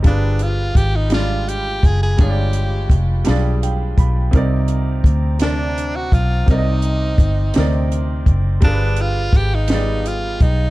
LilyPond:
<<
  \new Staff \with { instrumentName = "Glass harmonica" } { \time 6/8 \key c \minor \tempo 4. = 56 << { <f' f'' b''>2.~ | <f' f'' b''>2. | <c'' g'' d'''>2.~ | <c'' g'' d'''>2. |
<aes' f'' b''>2. | } \\ { g''2.~ | g''2. | bes''2. | c'''2. |
g''2. | } >> }
  \new Staff \with { instrumentName = "Grand piano" } { \time 6/8 \key c \minor << { r2. | r2 g''8 b''8 | r2. | r2. |
r2. | } \\ { <g d' f' aes' b'>4~ <g d' f' aes' b'>16 r16 <g aes d' f' d''>4~ <g aes d' f' d''>16 r16 | <g aes d' f' des'' d''>4~ <g aes d' f' des'' d''>16 r16 <g d' f' aes' d''>4~ <g d' f' aes' d''>16 r16 | <c c' ees' bes' d''>4~ <c c' ees' bes' d''>16 r16 <c c' d' bes' d''>4~ <c c' d' bes' d''>16 r16 | <c c' ees' bes' d'' ees''>4~ <c c' ees' bes' d'' ees''>16 r16 <c c' ees' bes' d''>4~ <c c' ees' bes' d''>16 r16 |
<g d' f' aes' bes' b'>4~ <g d' f' aes' bes' b'>16 r16 <g b f' aes' d''>4~ <g b f' aes' d''>16 r16 | } >> }
  \new Staff \with { instrumentName = "Tenor saxophone" } { \time 6/8 \key c \minor d'8 f'8 g'16 ees'16 f'8 g'8 aes'16 aes'16 | g'4 r2 | r4. d'8. fis'16 f'8 | ees'2 r4 |
d'8 f'8 g'16 ees'8. f'8 ees'8 | }
  \new Staff \with { instrumentName = "Fingered electric bass" } { \clef bass \time 6/8 \key c \minor g,,4 aes,,4. fis,,8 | g,,4 f,,8 b,,4 b,,8 | c,4 d,4. b,,8 | c,4 g,,8 d,4 fis,,8 |
g,,4 aes,,4. b,,8 | }
  \new DrumStaff \with { instrumentName = "Drums" } \drummode { \time 6/8 <hh bd>8 hh8 <hh bd>8 <hh sn>8 hh8 <hh bd>8 | <hh bd>8 hh8 <hh bd>8 <hh sn>8 hh8 <hh bd>8 | <hh bd>8 hh8 <hh bd>8 <hh sn>8 hh8 <hh bd>8 | <hh bd>8 hh8 <hh bd>8 <hh sn>8 hh8 <hh bd>8 |
<hh bd>8 hh8 <hh bd>8 <hh sn>8 hh8 <hh bd>8 | }
>>